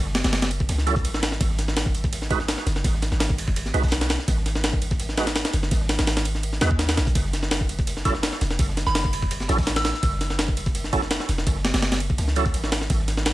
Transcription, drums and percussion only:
0.06 snare
0.15 snare, closed hi-hat, ride
0.24 snare, ride
0.33 snare, closed hi-hat, ride
0.42 snare, ride
0.51 closed hi-hat, ride
0.60 kick
0.69 snare, closed hi-hat, ride
0.78 snare
0.87 closed hi-hat, ride
0.96 kick, closed hi-hat
1.05 closed hi-hat, ride
1.14 snare
1.23 snare, closed hi-hat, ride
1.32 snare
1.40 kick, closed hi-hat, ride
1.50 snare
1.58 snare, closed hi-hat, ride
1.68 snare
1.77 snare, closed hi-hat, ride
1.86 kick
1.95 closed hi-hat, ride
2.04 kick, closed hi-hat
2.13 closed hi-hat, ride
2.22 snare
2.30 kick, snare, closed hi-hat, ride
2.40 snare
2.48 snare, closed hi-hat, ride
2.58 snare
2.67 snare, closed hi-hat, ride
2.76 snare
2.84 kick, closed hi-hat, ride
2.94 snare
3.02 snare, closed hi-hat, ride
3.12 snare
3.20 snare, closed hi-hat, ride
3.30 kick
3.38 closed hi-hat, ride
3.48 kick
3.56 closed hi-hat, ride
3.66 snare, closed hi-hat
3.74 snare, closed hi-hat, ride
3.83 kick, snare, closed hi-hat
3.88 snare, closed hi-hat
3.91 snare, closed hi-hat, ride
4.01 snare, ride
4.10 snare, closed hi-hat, ride
4.19 snare
4.28 kick, closed hi-hat, ride
4.37 snare
4.46 snare, closed hi-hat, ride
4.55 snare
4.64 snare, closed hi-hat, ride
4.73 kick
4.82 closed hi-hat, ride
4.91 kick, closed hi-hat
5.00 closed hi-hat, ride
5.09 snare
5.17 snare, closed hi-hat, ride
5.27 snare, ride
5.35 snare, closed hi-hat, ride
5.45 snare, ride
5.53 snare, closed hi-hat, ride
5.63 snare
5.71 kick, closed hi-hat, ride
5.81 snare
5.89 snare, closed hi-hat, ride
5.99 snare, ride
6.07 snare, closed hi-hat, ride
6.17 snare, ride
6.25 closed hi-hat, ride
6.35 snare
6.43 ride
6.53 snare
6.61 snare, closed hi-hat, ride
6.71 kick, snare
6.79 snare, closed hi-hat, ride
6.89 snare, closed hi-hat, ride
6.96 snare, ride
7.07 kick, closed hi-hat
7.15 kick, closed hi-hat, ride
7.25 snare
7.33 snare, closed hi-hat, ride
7.43 snare
7.51 snare, closed hi-hat, ride
7.61 kick
7.69 closed hi-hat, ride
7.79 kick, closed hi-hat
7.87 closed hi-hat, ride
7.96 snare
8.05 kick, snare, closed hi-hat, ride
8.15 snare
8.23 snare, closed hi-hat, ride
8.33 snare
8.41 snare, closed hi-hat, ride
8.51 snare
8.59 kick, closed hi-hat, ride
8.69 snare
8.77 snare, closed hi-hat, ride
8.87 snare
8.95 snare, closed hi-hat, ride
9.04 kick
9.13 closed hi-hat, ride
9.22 kick
9.31 closed hi-hat, ride
9.40 snare, closed hi-hat
9.49 snare, closed hi-hat, ride
9.58 kick, snare, closed hi-hat
9.63 snare, closed hi-hat
9.67 snare, closed hi-hat, ride
9.76 snare, ride
9.85 snare, closed hi-hat, ride
9.94 snare
10.03 kick, closed hi-hat, ride
10.13 snare
10.21 snare, closed hi-hat, ride
10.30 snare
10.38 snare, closed hi-hat, ride
10.48 kick
10.57 closed hi-hat, ride
10.66 kick, closed hi-hat
10.75 closed hi-hat, ride
10.84 snare
10.93 kick, closed hi-hat, ride
11.02 snare
11.11 snare, closed hi-hat, ride
11.20 snare
11.29 snare, closed hi-hat, ride
11.38 snare
11.47 kick, closed hi-hat, ride
11.56 snare
11.65 snare, closed hi-hat, ride
11.74 snare, ride
11.82 snare, closed hi-hat, ride
11.92 snare, ride
12.00 closed hi-hat, ride
12.10 kick
12.18 snare, closed hi-hat, ride
12.28 snare
12.35 closed hi-hat, ride
12.46 kick, closed hi-hat
12.54 closed hi-hat, ride
12.64 snare
12.72 snare, closed hi-hat, ride
12.81 snare
12.90 kick, closed hi-hat, ride
12.99 snare
13.08 snare, closed hi-hat, ride
13.17 snare
13.25 snare, closed hi-hat, ride

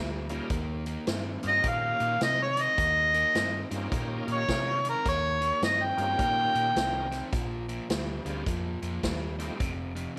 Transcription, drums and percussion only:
0.29 closed hi-hat
0.50 kick, closed hi-hat
0.86 closed hi-hat
1.07 snare, closed hi-hat
1.43 closed hi-hat
1.64 kick, closed hi-hat
2.00 closed hi-hat
2.21 snare, closed hi-hat
2.57 closed hi-hat
2.78 kick, closed hi-hat
3.14 closed hi-hat
3.35 snare, closed hi-hat
3.71 closed hi-hat
3.92 kick, closed hi-hat
4.28 closed hi-hat
4.49 kick, snare, closed hi-hat
4.85 closed hi-hat
5.06 kick, closed hi-hat
5.42 closed hi-hat
5.62 snare, closed hi-hat
5.98 closed hi-hat
6.19 kick, closed hi-hat
6.55 closed hi-hat
6.76 snare, closed hi-hat
7.12 snare, closed hi-hat
7.33 kick, closed hi-hat
7.69 closed hi-hat
7.90 snare, closed hi-hat
8.26 closed hi-hat
8.46 kick, closed hi-hat
8.82 closed hi-hat
9.03 kick, snare, closed hi-hat
9.40 closed hi-hat
9.60 kick, closed hi-hat
9.96 closed hi-hat

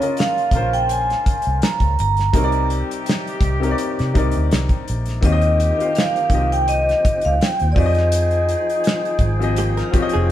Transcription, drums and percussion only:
0.02 closed hi-hat
0.17 snare, closed hi-hat
0.38 closed hi-hat
0.51 kick, closed hi-hat
0.74 closed hi-hat
0.89 closed hi-hat
1.10 snare, closed hi-hat
1.26 kick, closed hi-hat
1.42 closed hi-hat
1.62 snare, closed hi-hat
1.80 kick, closed hi-hat
1.99 closed hi-hat
2.17 snare, closed hi-hat
2.34 kick, closed hi-hat
2.52 closed hi-hat
2.70 closed hi-hat
2.91 closed hi-hat
3.06 snare, closed hi-hat
3.27 closed hi-hat
3.41 kick, closed hi-hat
3.63 closed hi-hat
3.78 closed hi-hat
3.99 snare, closed hi-hat
4.15 kick, closed hi-hat
4.32 closed hi-hat
4.51 snare, closed hi-hat
4.69 kick, closed hi-hat
4.88 closed hi-hat
5.06 snare, closed hi-hat
5.23 kick, closed hi-hat
5.41 closed hi-hat
5.60 closed hi-hat
5.80 closed hi-hat
5.95 snare, closed hi-hat
6.16 closed hi-hat
6.30 kick, closed hi-hat
6.52 closed hi-hat
6.68 closed hi-hat
6.89 snare, closed hi-hat
7.05 kick, closed hi-hat
7.21 closed hi-hat
7.41 snare, closed hi-hat
7.59 closed hi-hat
7.76 kick, open hi-hat
7.95 snare, closed hi-hat
8.12 closed hi-hat
8.31 closed hi-hat
8.49 closed hi-hat
8.70 closed hi-hat
8.84 snare, closed hi-hat
9.05 closed hi-hat
9.19 kick, closed hi-hat
9.42 closed hi-hat
9.56 closed hi-hat
9.77 snare, closed hi-hat
9.94 kick, closed hi-hat
10.09 closed hi-hat

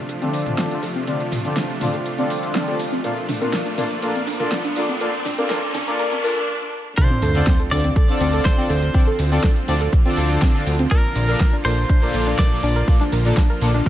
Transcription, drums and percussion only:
0.09 closed hi-hat, shaker
0.22 closed hi-hat, high conga, shaker
0.34 open hi-hat, shaker
0.46 closed hi-hat, mid tom, shaker
0.58 snare, closed hi-hat, high conga, shaker
0.71 closed hi-hat, shaker
0.83 open hi-hat, shaker
0.96 high conga, shaker
1.07 closed hi-hat, shaker
1.20 closed hi-hat, shaker
1.32 mid tom, open hi-hat, shaker
1.45 closed hi-hat, high conga, shaker
1.56 snare, closed hi-hat, shaker
1.69 closed hi-hat, shaker
1.81 mid tom, open hi-hat, shaker
1.94 closed hi-hat, shaker
2.06 closed hi-hat, shaker
2.19 closed hi-hat, high conga, shaker
2.30 open hi-hat, shaker
2.43 closed hi-hat, shaker
2.55 snare, closed hi-hat, high conga, shaker
2.68 closed hi-hat, shaker
2.80 open hi-hat, shaker
2.92 high conga, shaker
3.04 closed hi-hat, shaker
3.17 closed hi-hat, shaker
3.29 mid tom, open hi-hat, shaker
3.41 closed hi-hat, high conga, shaker
3.53 snare, closed hi-hat, shaker
3.66 closed hi-hat, shaker
3.78 mid tom, open hi-hat, high conga, shaker
3.91 closed hi-hat, shaker
4.02 closed hi-hat, shaker
4.15 closed hi-hat, high conga, shaker
4.27 open hi-hat, shaker
4.40 closed hi-hat, mid tom, shaker
4.52 snare, closed hi-hat, high conga, shaker
4.64 closed hi-hat, shaker
4.76 open hi-hat, shaker
4.89 high conga, shaker
5.01 closed hi-hat, shaker
5.14 closed hi-hat, shaker
5.25 mid tom, open hi-hat, shaker
5.38 closed hi-hat, high conga, shaker
5.50 snare, closed hi-hat, shaker
5.63 closed hi-hat, shaker
5.75 mid tom, open hi-hat, high conga, shaker
5.87 closed hi-hat, shaker
5.99 closed hi-hat, shaker
6.12 closed hi-hat, high conga, shaker
6.24 open hi-hat, shaker
6.37 closed hi-hat, shaker
6.98 kick, closed hi-hat, shaker
7.22 open hi-hat, shaker
7.35 closed hi-hat, shaker
7.47 kick, snare, closed hi-hat, shaker
7.60 closed hi-hat
7.71 open hi-hat, shaker
7.84 closed hi-hat, shaker
7.96 kick, closed hi-hat, shaker
8.09 closed hi-hat
8.21 open hi-hat, shaker
8.33 closed hi-hat, shaker
8.45 kick, snare, closed hi-hat, shaker
8.70 open hi-hat, shaker
8.82 closed hi-hat, shaker
8.94 kick, closed hi-hat, shaker
9.19 open hi-hat, shaker
9.32 closed hi-hat, shaker
9.43 kick, snare, closed hi-hat, shaker
9.56 closed hi-hat
9.68 open hi-hat, shaker
9.81 closed hi-hat, shaker
9.93 kick, closed hi-hat, shaker
10.05 closed hi-hat
10.17 open hi-hat, shaker
10.30 closed hi-hat, shaker
10.42 kick, snare, closed hi-hat, shaker
10.67 open hi-hat, shaker
10.79 closed hi-hat, shaker
10.91 kick, closed hi-hat, shaker
11.16 open hi-hat, shaker
11.28 closed hi-hat, shaker
11.40 kick, snare, closed hi-hat, shaker
11.53 closed hi-hat
11.65 open hi-hat, shaker
11.78 closed hi-hat, shaker
11.89 kick, closed hi-hat, shaker
12.02 closed hi-hat
12.14 open hi-hat, shaker
12.27 closed hi-hat, shaker
12.38 kick, snare, closed hi-hat, shaker
12.63 open hi-hat, shaker
12.76 closed hi-hat, shaker
12.88 kick, closed hi-hat, shaker
13.00 snare, closed hi-hat
13.12 open hi-hat, shaker
13.25 closed hi-hat, shaker
13.37 kick, snare, closed hi-hat, shaker
13.50 closed hi-hat
13.61 open hi-hat, shaker
13.74 closed hi-hat, shaker
13.86 kick, closed hi-hat

